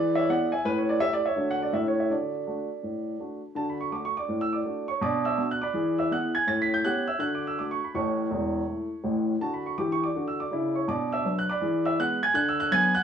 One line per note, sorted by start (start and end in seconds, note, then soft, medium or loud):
0.00 0.22 E3 medium
0.00 0.12 G#4 soft
0.00 0.13 B4 medium
0.00 0.15 D5 loud
0.15 0.28 C#5 medium
0.15 0.28 E5 medium
0.29 0.49 B3 soft
0.29 0.49 E4 soft
0.29 0.49 G#4 soft
0.29 0.51 D5 medium
0.29 0.52 F#5 medium
0.52 0.64 E5 medium
0.52 0.64 G#5 medium
0.65 0.95 A2 medium
0.65 0.86 C#4 soft
0.65 0.77 B4 loud
0.78 0.89 C#5 medium
0.89 1.01 D5 medium
0.99 1.20 A3 soft
0.99 1.20 E4 soft
0.99 1.20 G4 soft
0.99 1.12 E5 loud
1.13 1.25 D5 medium
1.26 1.48 C#5 medium
1.26 1.49 E5 medium
1.36 1.67 D3 medium
1.36 1.56 A3 soft
1.36 1.57 D4 soft
1.36 1.58 F#4 soft
1.51 1.62 F#5 medium
1.62 1.74 D5 medium
1.73 2.04 A2 medium
1.73 1.93 A3 soft
1.73 1.95 C#4 soft
1.73 1.94 A4 soft
1.73 1.86 E5 medium
1.88 1.99 C#5 medium
2.00 2.11 E5 medium
2.10 2.41 D3 medium
2.10 2.31 F#4 soft
2.10 3.16 A4 soft
2.10 3.20 D5 medium
2.47 2.67 A3 soft
2.47 2.67 D4 soft
2.47 2.67 F#4 soft
2.83 3.14 A2 soft
3.19 3.39 A3 soft
3.19 3.40 D4 soft
3.19 3.40 F#4 soft
3.55 3.86 D3 medium
3.55 3.77 F#4 soft
3.55 3.68 A5 medium
3.69 3.81 B5 medium
3.81 3.93 C#6 medium
3.92 4.12 A3 soft
3.92 4.12 D4 soft
3.92 4.12 F#4 soft
3.92 4.04 D6 medium
4.05 4.17 C#6 medium
4.17 4.40 D5 soft
4.17 4.41 D6 medium
4.29 4.60 A2 medium
4.41 4.53 E6 medium
4.53 4.87 D5 soft
4.53 4.88 D6 medium
4.65 4.85 A3 soft
4.65 4.85 D4 soft
4.65 4.86 F#4 soft
4.88 5.02 C#5 soft
4.88 5.02 C#6 medium
5.01 5.33 B2 medium
5.01 5.23 D4 medium
5.01 5.24 D5 medium
5.01 5.26 D6 medium
5.25 5.49 E5 medium
5.25 5.51 E6 medium
5.37 5.58 B3 soft
5.37 5.58 D4 soft
5.37 5.59 F#4 soft
5.51 5.63 F#6 medium
5.62 5.96 D5 medium
5.62 5.96 B5 medium
5.62 5.98 D6 medium
5.74 6.05 E3 medium
5.74 5.95 G#4 soft
5.99 6.11 E5 medium
5.99 6.12 E6 medium
6.11 6.31 B3 soft
6.11 6.32 E4 soft
6.11 6.32 G#4 soft
6.11 6.34 F#5 medium
6.11 6.35 F#6 medium
6.35 6.47 G#5 medium
6.35 6.48 G#6 medium
6.47 6.79 A2 medium
6.47 6.69 C#4 soft
6.47 6.60 A6 medium
6.62 6.73 B6 medium
6.74 6.85 G6 medium
6.84 7.04 B3 soft
6.84 7.04 C#4 soft
6.84 7.05 G4 medium
6.84 7.07 F#5 medium
6.84 7.08 F#6 medium
7.08 7.21 E5 medium
7.08 7.21 E6 medium
7.19 7.51 D3 medium
7.19 7.41 F#4 soft
7.19 7.33 F#6 medium
7.35 7.46 D6 medium
7.47 7.59 E6 medium
7.58 7.78 A3 soft
7.58 7.79 D4 soft
7.58 7.79 F#4 soft
7.58 7.70 D6 medium
7.71 7.83 C#6 medium
7.84 7.95 B5 medium
7.94 8.24 A1 medium
7.94 8.23 A2 medium
7.94 9.24 C#5 soft
7.94 9.24 A5 soft
7.94 9.28 C#6 medium
8.30 8.60 E1 medium
8.30 8.60 E2 medium
8.68 8.88 A3 soft
8.68 8.88 E4 soft
8.68 8.88 A4 soft
9.03 9.33 A1 medium
9.03 9.33 A2 medium
9.40 9.70 D3 soft
9.40 9.71 F#4 medium
9.40 9.53 A5 medium
9.54 9.65 B5 medium
9.66 9.78 C#6 medium
9.78 10.07 E3 medium
9.78 10.08 G4 medium
9.78 9.90 D6 medium
9.92 10.03 C#6 medium
10.04 10.26 D5 soft
10.04 10.27 D6 medium
10.15 10.44 D3 medium
10.15 10.45 F#4 soft
10.28 10.39 E6 medium
10.40 10.73 D5 medium
10.40 10.75 D6 medium
10.51 10.80 C#3 medium
10.51 10.81 E4 medium
10.75 10.87 C#5 medium
10.75 10.88 C#6 medium
10.88 11.18 B2 medium
10.88 11.09 D4 soft
10.88 11.10 D5 medium
10.88 11.11 D6 medium
11.12 11.36 E5 medium
11.12 11.37 E6 medium
11.25 11.45 F#3 soft
11.25 11.45 D4 soft
11.25 11.45 B4 soft
11.39 11.49 F#6 medium
11.49 11.83 D5 medium
11.49 11.82 B5 medium
11.49 11.84 D6 medium
11.61 11.92 E3 medium
11.61 11.82 G#4 soft
11.86 11.97 E5 medium
11.86 11.98 E6 medium
11.99 12.18 G#3 soft
11.99 12.18 B3 soft
11.99 12.19 B4 medium
11.99 12.21 F#5 medium
11.99 12.22 F#6 medium
12.23 12.34 G#5 medium
12.23 12.35 G#6 medium
12.34 12.65 D3 medium
12.34 12.46 F#6 loud
12.49 12.59 E6 medium
12.60 12.71 F#6 loud
12.71 12.91 F#3 medium
12.71 12.92 B3 medium
12.71 12.92 B4 medium
12.71 12.94 G#5 medium
12.71 12.94 G#6 loud
12.95 13.03 F#5 medium
12.95 13.03 F#6 loud